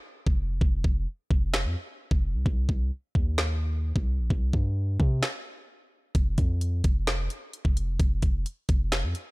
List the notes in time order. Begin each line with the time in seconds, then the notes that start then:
0.26 F1, kick
0.61 F1, kick
0.84 F1, kick
1.31 F1, kick
1.54 finger snap, snare
1.65 F2
2.11 F1, kick
2.34 C2
2.46 C2, kick
2.69 C2, kick
3.15 D#2, kick
3.38 finger snap, snare
3.96 C2, kick
4.19 A#1
4.30 C2, kick
4.53 G2, kick
5.00 C3, kick
5.23 finger snap, snare
6.15 F1, kick, closed hi-hat
6.38 F2, kick, closed hi-hat
6.61 closed hi-hat
6.84 F1, kick, closed hi-hat
7.07 finger snap, snare, closed hi-hat
7.30 closed hi-hat
7.53 closed hi-hat
7.65 F1, kick
7.77 closed hi-hat
8.00 F1, kick, closed hi-hat
8.22 F1, kick, closed hi-hat
8.46 closed hi-hat
8.69 F1, kick, closed hi-hat
8.92 finger snap, snare, closed hi-hat
9.03 F2
9.15 closed hi-hat